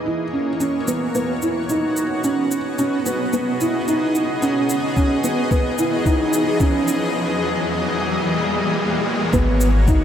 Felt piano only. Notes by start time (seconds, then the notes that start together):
0.06 E4
0.33 C#4
0.60 C#4
0.88 B3
1.15 B3
1.42 E4
1.70 D#4
2.24 C#4
2.79 C#4
3.06 B3
3.33 B3
3.61 E4
3.88 D#4
4.42 C#4
4.97 C#4
5.24 B3
5.51 B3
5.79 E4
6.06 D#4
6.60 C#4
9.33 B3
9.88 D#4